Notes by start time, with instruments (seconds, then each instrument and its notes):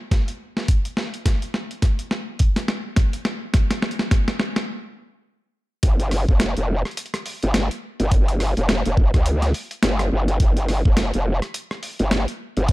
0.11 kick, snare, closed hi-hat
0.28 closed hi-hat
0.57 snare
0.68 kick, closed hi-hat
0.85 closed hi-hat
0.97 snare
1.14 closed hi-hat
1.26 kick, snare, closed hi-hat
1.42 closed hi-hat
1.54 snare
1.71 closed hi-hat
1.82 kick, snare, closed hi-hat
1.99 closed hi-hat
2.11 snare
2.39 kick, closed hi-hat
2.56 snare, closed hi-hat
2.68 snare
2.96 kick, snare, closed hi-hat
3.13 closed hi-hat
3.25 snare
3.54 kick, snare, closed hi-hat
3.71 snare, closed hi-hat
3.82 snare
3.91 closed hi-hat
3.99 snare
4.11 kick, snare, closed hi-hat
4.28 snare
4.39 snare
4.56 snare
5.83 wobble bass G1, kick, closed hi-hat
6.00 closed hi-hat
6.11 cross-stick, open hi-hat
6.29 wobble bass F1, kick
6.40 snare, closed hi-hat
6.57 wobble bass F1, closed hi-hat
6.85 cross-stick, closed hi-hat
6.91 closed hi-hat
6.97 closed hi-hat
7.06 closed hi-hat
7.14 cross-stick, closed hi-hat
7.26 open hi-hat
7.43 wobble bass G1, closed hi-hat
7.54 snare, closed hi-hat
7.71 closed hi-hat
8.00 wobble bass G1, closed hi-hat
8.12 kick, closed hi-hat
8.28 closed hi-hat
8.40 cross-stick, open hi-hat
8.57 wobble bass F1, closed hi-hat
8.69 snare, closed hi-hat
8.86 wobble bass F1, closed hi-hat
8.97 kick
9.14 wobble bass D2, kick, cross-stick, closed hi-hat
9.26 closed hi-hat
9.42 snare, closed hi-hat
9.54 open hi-hat
9.71 closed hi-hat
9.83 wobble bass G1, snare, closed hi-hat
9.99 cross-stick, closed hi-hat
10.12 wobble bass G1
10.28 closed hi-hat
10.40 wobble bass G1, kick, closed hi-hat
10.57 closed hi-hat
10.69 cross-stick, open hi-hat
10.85 wobble bass F1, kick
10.97 snare, closed hi-hat
11.14 wobble bass F1, closed hi-hat
11.42 cross-stick, closed hi-hat
11.54 closed hi-hat
11.71 cross-stick
11.83 open hi-hat
11.99 wobble bass G1, closed hi-hat
12.11 snare, closed hi-hat
12.28 closed hi-hat
12.57 wobble bass G1, closed hi-hat
12.68 kick, closed hi-hat